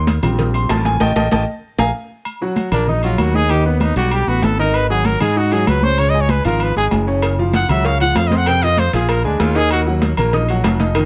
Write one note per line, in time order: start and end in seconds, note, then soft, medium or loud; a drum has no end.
0.00 0.17 D#2 loud
0.07 cowbell medium
0.07 high conga loud
0.07 low timbale medium
0.07 low agogo medium
0.23 0.66 A#1 medium
0.23 0.97 F3 medium
0.23 0.97 G3 medium
0.23 0.97 C4 medium
0.23 high conga soft
0.23 low conga medium
0.23 low agogo loud
0.39 cowbell loud
0.39 high conga soft
0.39 low conga medium
0.54 0.70 C6 medium
0.54 high conga soft
0.54 low agogo medium
0.69 0.99 A1 loud
0.69 0.85 A5 loud
0.69 cowbell medium
0.69 high conga medium
0.69 low timbale medium
0.69 low agogo loud
0.85 1.00 G#5 loud
0.85 cowbell medium
0.85 high conga medium
1.00 1.12 A1 loud
1.00 1.11 D#5 loud
1.00 1.11 G5 loud
1.00 1.11 A5 medium
1.00 cowbell medium
1.00 high conga loud
1.00 high timbale medium
1.16 1.28 A1 loud
1.16 1.26 D#5 loud
1.16 1.26 G5 loud
1.16 1.26 A5 loud
1.16 cowbell loud
1.16 high conga medium
1.16 high timbale loud
1.31 1.43 A1 loud
1.31 1.42 D#5 medium
1.31 1.42 G5 medium
1.31 1.42 A5 loud
1.31 cowbell loud
1.31 high conga loud
1.31 high timbale loud
1.78 1.90 A#1 loud
1.78 1.89 F5 loud
1.78 1.89 G#5 loud
1.78 1.89 A#5 loud
1.78 cowbell loud
1.78 high conga loud
1.78 high timbale loud
2.25 high conga soft
2.25 low agogo loud
2.41 2.67 F#3 medium
2.41 2.67 F#4 medium
2.41 2.67 F#5 medium
2.41 high conga soft
2.56 high conga loud
2.56 low timbale medium
2.56 low agogo medium
2.72 3.15 A#1 loud
2.72 2.85 A#3 medium
2.72 2.90 D4 medium
2.72 2.85 A#4 medium
2.72 2.85 A#5 medium
2.72 high conga soft
2.72 low conga medium
2.72 low agogo loud
2.88 3.00 D#4 medium
2.88 3.03 D#4 medium
2.88 3.01 D#5 medium
2.88 3.01 D#6 medium
2.88 high conga soft
2.88 low conga medium
3.03 3.29 F#3 medium
3.03 3.22 F4 medium
3.03 3.29 F#4 medium
3.03 3.29 F#5 medium
3.03 high conga soft
3.03 low agogo medium
3.18 3.91 D#2 loud
3.18 3.37 F#4 medium
3.18 high conga medium
3.18 low timbale medium
3.18 low agogo loud
3.34 3.47 D#4 medium
3.34 3.52 G#4 loud
3.34 3.47 D#5 medium
3.34 3.47 D#6 medium
3.34 high conga medium
3.49 3.62 D#3 medium
3.49 3.63 D#4 medium
3.49 3.66 G4 medium
3.49 3.63 D#5 medium
3.49 high conga soft
3.49 low agogo loud
3.65 3.91 B3 medium
3.65 3.83 B3 medium
3.65 3.91 B4 medium
3.65 3.91 B5 medium
3.65 high conga soft
3.80 3.96 D#4 medium
3.80 high conga medium
3.80 low timbale medium
3.80 low agogo medium
3.96 4.25 B1 loud
3.96 4.22 G3 medium
3.96 4.15 F#4 medium
3.96 4.22 G4 medium
3.96 4.22 G5 medium
3.96 high conga soft
3.96 low agogo medium
4.11 4.30 G4 medium
4.11 high conga soft
4.11 low agogo loud
4.27 4.42 A1 medium
4.27 4.53 B3 medium
4.27 4.45 F#4 medium
4.27 4.53 B4 medium
4.27 4.53 B5 medium
4.27 high conga soft
4.42 5.15 G#1 loud
4.42 4.59 A4 medium
4.42 high conga medium
4.42 low timbale medium
4.42 low agogo medium
4.58 4.84 D#3 medium
4.58 4.84 D#4 medium
4.58 4.76 A#4 loud
4.58 4.85 D#5 medium
4.58 high conga soft
4.74 4.89 B4 loud
4.74 high conga soft
4.74 low agogo medium
4.89 5.15 F#3 medium
4.89 5.16 F#4 medium
4.89 5.08 G#4 loud
4.89 5.16 F#5 medium
4.89 high conga soft
5.05 5.21 A#4 medium
5.05 high conga loud
5.05 low timbale medium
5.05 low agogo medium
5.20 5.64 G#2 loud
5.20 5.33 G#3 medium
5.20 5.34 G#4 medium
5.20 5.39 G#4 medium
5.20 5.34 G#5 medium
5.20 high conga soft
5.20 low conga medium
5.20 low agogo loud
5.36 5.49 D#4 medium
5.36 5.54 F#4 medium
5.36 5.49 D#5 medium
5.36 5.49 D#6 medium
5.36 high conga soft
5.52 5.77 F#3 medium
5.52 5.77 F#4 medium
5.52 5.70 G#4 loud
5.52 5.78 F#5 medium
5.52 high conga soft
5.52 low agogo medium
5.67 6.39 C#2 loud
5.67 5.86 B4 medium
5.67 high conga medium
5.67 low timbale medium
5.67 low agogo loud
5.82 5.95 C#4 medium
5.82 6.01 C5 loud
5.82 5.96 C#5 medium
5.82 5.96 C#6 medium
5.82 high conga medium
5.98 6.11 C#3 medium
5.98 6.11 C#4 medium
5.98 6.11 C#5 medium
5.98 low agogo loud
6.10 6.23 D#5 loud
6.10 high conga soft
6.14 6.39 G#3 medium
6.14 6.40 G#4 medium
6.14 6.40 G#5 medium
6.21 6.32 C#5 medium
6.29 6.46 B4 medium
6.29 high conga loud
6.29 low timbale medium
6.29 low agogo medium
6.45 6.74 G#1 loud
6.45 6.70 F3 medium
6.45 6.71 F4 medium
6.45 6.64 A#4 medium
6.45 6.71 F5 medium
6.45 high conga soft
6.45 low agogo medium
6.60 6.77 B4 medium
6.60 high conga soft
6.60 low agogo loud
6.76 6.90 G#1 medium
6.76 7.02 G#3 medium
6.76 7.02 G#4 medium
6.76 6.87 G#4 loud
6.76 7.02 G#5 medium
6.76 high conga soft
6.91 7.64 F#1 loud
6.91 high conga medium
6.91 low timbale medium
6.91 low agogo medium
7.07 7.33 C#3 medium
7.07 7.33 C#4 medium
7.07 7.33 C#5 medium
7.07 high conga soft
7.22 cowbell medium
7.22 high conga soft
7.22 low agogo loud
7.38 7.64 F3 medium
7.38 7.64 F4 medium
7.38 7.64 F5 medium
7.38 high conga soft
7.53 7.72 F#5 loud
7.53 cowbell medium
7.53 high conga loud
7.53 low timbale medium
7.53 low agogo medium
7.69 8.12 C#2 medium
7.69 7.82 F#3 medium
7.69 7.82 F#4 medium
7.69 7.87 E5 medium
7.69 7.83 F#5 medium
7.69 high conga soft
7.69 low conga medium
7.69 low agogo loud
7.84 7.98 C#4 medium
7.84 7.98 C#5 medium
7.84 8.01 F5 medium
7.84 7.98 C#6 medium
7.84 cowbell loud
7.84 high conga soft
8.00 8.26 F3 medium
8.00 8.26 F4 medium
8.00 8.26 F5 medium
8.00 8.18 F#5 loud
8.00 high conga soft
8.00 low agogo medium
8.15 8.88 F2 loud
8.15 8.29 F5 loud
8.15 cowbell medium
8.15 high conga medium
8.15 low timbale medium
8.15 low agogo loud
8.28 8.38 D#5 medium
8.28 high conga loud
8.32 8.44 C4 medium
8.32 8.45 C5 medium
8.32 8.45 C6 medium
8.32 cowbell medium
8.37 8.49 F#5 loud
8.46 8.60 C3 medium
8.46 8.60 C4 medium
8.46 8.60 C5 medium
8.46 8.65 G5 loud
8.46 cowbell loud
8.46 low agogo loud
8.62 8.88 F3 medium
8.62 8.88 F4 medium
8.62 8.81 D#5 loud
8.62 8.88 F5 medium
8.62 cowbell medium
8.62 high conga soft
8.77 8.94 C5 loud
8.77 cowbell medium
8.77 high conga loud
8.77 low timbale medium
8.77 low agogo medium
8.93 9.22 A#1 loud
8.93 9.19 F3 medium
8.93 9.19 F4 medium
8.93 9.11 G#4 loud
8.93 9.19 F5 medium
8.93 cowbell medium
8.93 high conga soft
8.93 low agogo medium
9.09 9.25 A#4 loud
9.09 cowbell loud
9.09 high conga soft
9.09 low agogo loud
9.24 9.39 D2 medium
9.24 9.50 G#3 medium
9.24 9.43 D4 medium
9.24 9.50 G#4 medium
9.24 9.50 G#5 medium
9.24 high conga soft
9.40 10.12 D#2 loud
9.40 9.58 F4 loud
9.40 cowbell medium
9.40 high conga medium
9.40 low timbale medium
9.40 low agogo medium
9.55 9.81 D#3 medium
9.55 9.81 D#4 medium
9.55 9.71 G#4 loud
9.55 9.81 D#5 medium
9.55 cowbell medium
9.71 9.81 F#4 loud
9.71 cowbell loud
9.71 high conga soft
9.71 low agogo loud
9.86 10.12 F#3 medium
9.86 10.12 F#4 medium
9.86 10.12 F#5 medium
9.86 high conga soft
10.02 cowbell medium
10.02 high conga loud
10.02 low timbale medium
10.02 low agogo medium
10.17 10.61 A#1 loud
10.17 10.30 A#3 medium
10.17 10.31 A#4 medium
10.17 10.31 A#5 medium
10.17 high conga soft
10.17 low conga medium
10.17 low agogo loud
10.33 10.46 D#4 medium
10.33 10.46 D#5 medium
10.33 10.46 D#6 medium
10.33 cowbell loud
10.33 high conga soft
10.33 low conga medium
10.48 10.75 F#3 medium
10.48 10.75 F#4 medium
10.48 10.75 F#5 medium
10.48 high conga soft
10.48 low agogo medium
10.64 11.05 F1 loud
10.64 cowbell medium
10.64 high conga medium
10.64 low timbale loud
10.64 low agogo loud
10.80 10.92 D#4 medium
10.80 10.93 D#5 medium
10.80 10.93 D#6 medium
10.80 cowbell medium
10.80 high conga medium
10.95 11.05 D#3 medium
10.95 11.05 D#4 medium
10.95 11.05 D#5 medium
10.95 cowbell loud
10.95 high timbale medium
10.95 low agogo loud